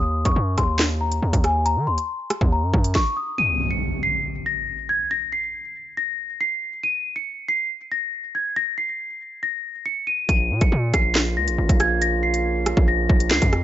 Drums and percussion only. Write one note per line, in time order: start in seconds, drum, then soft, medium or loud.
0.25 kick loud
0.25 closed hi-hat medium
0.58 kick medium
0.58 cross-stick loud
0.58 closed hi-hat medium
0.79 snare loud
0.79 clap medium
1.12 closed hi-hat medium
1.33 kick loud
1.33 closed hi-hat medium
1.44 cross-stick loud
1.44 closed hi-hat medium
1.66 closed hi-hat medium
1.98 closed hi-hat medium
2.30 cross-stick loud
2.30 closed hi-hat medium
2.41 kick loud
2.74 kick loud
2.84 closed hi-hat medium
2.95 kick loud
2.95 snare medium
10.29 kick loud
10.29 closed hi-hat medium
10.61 kick loud
10.61 closed hi-hat medium
10.94 kick medium
10.94 cross-stick loud
10.94 closed hi-hat medium
11.15 snare loud
11.15 clap medium
11.48 closed hi-hat medium
11.69 kick loud
11.69 closed hi-hat medium
11.80 cross-stick loud
11.80 closed hi-hat medium
12.02 closed hi-hat medium
12.34 closed hi-hat medium
12.66 cross-stick loud
12.66 closed hi-hat medium
12.77 kick loud
13.09 kick loud
13.20 closed hi-hat medium
13.31 snare loud
13.31 clap medium
13.42 kick loud
13.42 closed hi-hat medium
13.53 cross-stick loud
13.53 closed hi-hat soft